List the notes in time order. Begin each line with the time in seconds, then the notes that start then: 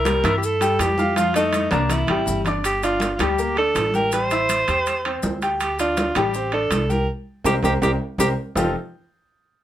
Already playing: C2 A#4
0.05 G3 G4 G5, high conga, high timbale, maracas
0.24 G2 E4 E5 E6, high conga, low conga, high timbale, maracas
0.37 G4
0.43 A4, maracas
0.61 G3 G4 G5, high conga, high timbale, maracas
0.79 F2 G4, high conga, high timbale, low timbale, maracas
0.98 F4 F5 F6, high conga, maracas
1.16 F3 F4 F5, high conga, high timbale, maracas
1.34 A3 D#4 A4 A5, high conga, high timbale, maracas
1.53 high conga, high timbale, maracas
1.71 C2 A#3 D4 A#4 A#5, low conga, high timbale, maracas
1.89 E4, low conga, high timbale, maracas
2.07 A1 G3 G4 G5, low conga, high timbale
2.26 G1, low conga, maracas
2.45 D4 D5 D6, low conga, high timbale, maracas
2.63 G4, high conga, high timbale, maracas
2.82 D4 F4 D5, high conga, high timbale, maracas
3.00 high conga, high timbale, maracas
3.14 F4
3.19 D2 G3 G4, high conga, high timbale, maracas
3.38 A#3 A#4, high conga, maracas
3.56 D4 A4 D5, high conga, high timbale
3.75 A1, high conga, high timbale, low timbale, maracas
3.94 G4 A#4 G5, high conga, maracas
4.12 G3 G4 C5, high timbale, maracas
4.30 E4 E5, high conga, high timbale, maracas
4.49 high conga, high timbale, maracas
4.68 E2 G4 G5, high conga, high timbale, maracas
4.86 high conga, high timbale, maracas
5.05 C4 C5, high conga, high timbale
5.23 D2, high conga, low timbale, maracas
5.42 G4 G5, high timbale, maracas
5.60 G4, high conga, high timbale, maracas
5.79 D4 F4 D5, high conga, high timbale, maracas
5.97 high conga, high timbale, maracas
6.15 A1 G3 G4, high conga, high timbale, maracas
6.34 C4 C5, high conga, maracas
6.52 D4 A4 D5, high conga, high timbale
6.71 C2, high conga, high timbale, low timbale, maracas
6.89 G4 A#4 G5, high conga, maracas
7.44 C2 G4 A#4 C5, high conga, high timbale, maracas
7.63 C2 G4 A#4 C5, high conga, high timbale, maracas
7.82 C2 G4 A#4 C5, high conga, high timbale, maracas
8.18 C2 G4 A#4 C5, high conga, high timbale, maracas
8.55 F1 F3 C4 D#4 F4 G4 A4, low conga, low timbale, maracas